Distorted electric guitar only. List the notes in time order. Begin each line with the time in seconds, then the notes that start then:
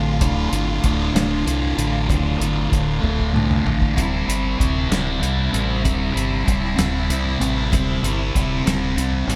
Already playing: D2 A2 D3
0.21 D2 A2 D3
0.52 D2 A2 D3
0.83 D2 A2 D3
1.14 D2 A2 D3
1.45 D2 A2 D3
1.77 D2 A2 D3
2.08 D2 A2 D3
2.39 D2 A2 D3
2.70 D2 A2 D3
3.01 D2 A2 D3
3.33 D2 A2 D3
3.64 D2 A2 D3
3.95 C3 G3 C4
4.27 C3 G3 C4
4.58 C3 G3 C4
4.89 C3 G3 C4
5.20 C3 G3 C4
5.52 C3 G3 C4
5.84 C3 G3 C4
6.14 C3 G3 C4
6.45 C3 G3 C4
6.76 C3 G3 C4
7.09 C3 G3 C4
7.40 C3 G3 C4
7.71 C3 G3 C4
8.03 C3 G3 C4
8.35 C3 G3 C4
8.65 C3 G3 C4
8.97 C3 G3 C4
9.27 C3 G3 C4